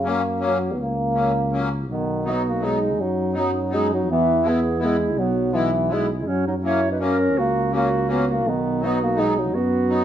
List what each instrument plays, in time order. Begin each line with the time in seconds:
Already playing: tuba F#2, euphonium C#3
0.02 accordion F#3 A#3 C#4
0.09 euphonium A#3
0.40 accordion F#3 A#3 C#4
0.45 euphonium F#3
0.72 euphonium B3
0.78 tuba C#2
0.82 euphonium A#3
1.14 accordion F#3 A#3 C#4
1.51 accordion F#3 A#3 C#4
1.88 tuba B1, clarinet B3
1.92 euphonium D#3
2.24 accordion F#3 B3 D#4, clarinet F#4
2.30 euphonium B3
2.48 euphonium A#3, clarinet F#4
2.60 accordion F#3 B3 D#4, euphonium G#3
2.64 clarinet D#4
2.98 tuba F#2, euphonium F#3, clarinet D#4
3.32 accordion F#3 B3 D#4, clarinet D#4
3.38 euphonium F#3
3.69 accordion F#3 B3 D#4
3.74 euphonium G#3, clarinet D#4
3.94 euphonium F#3, clarinet D#4
4.07 tuba E2
4.11 euphonium E3, clarinet B3
4.41 accordion G#3 B3 E4
4.46 euphonium B3, clarinet G#4
4.78 accordion G#3 B3 E4, clarinet E4
4.84 euphonium G#3
5.16 tuba B1, euphonium F#3, clarinet B3
5.52 euphonium E3, accordion G#3 B3 E4, clarinet B3
5.88 accordion G#3 B3 E4, clarinet E4
5.93 euphonium G#3
6.18 euphonium G#3, clarinet E4
6.26 tuba F#2, euphonium F#3, clarinet C#4
6.47 euphonium F#3, clarinet D#4
6.62 accordion F#3 A#3 C#4, euphonium E4, clarinet C#5
6.91 euphonium D#4, clarinet B4
6.99 accordion F#3 A#3 C#4, euphonium C#4, clarinet A#4
7.35 tuba C#2, euphonium A#3, clarinet F#4
7.70 accordion F#3 A#3 C#4, clarinet F#4
7.75 euphonium A#3
8.06 accordion F#3 A#3 C#4, clarinet F#4
8.11 euphonium B3
8.29 euphonium A#3, clarinet F#4
8.44 tuba B1, clarinet B3
8.48 euphonium D#3
8.80 accordion F#3 B3 D#4, clarinet F#4
8.85 euphonium B3
9.02 euphonium A#3, clarinet F#4
9.15 accordion F#3 B3 D#4, euphonium G#3
9.19 clarinet D#4
9.37 euphonium F#3, clarinet D#4
9.53 tuba F#2, euphonium B3, clarinet F#4
9.88 accordion F#3 B3 D#4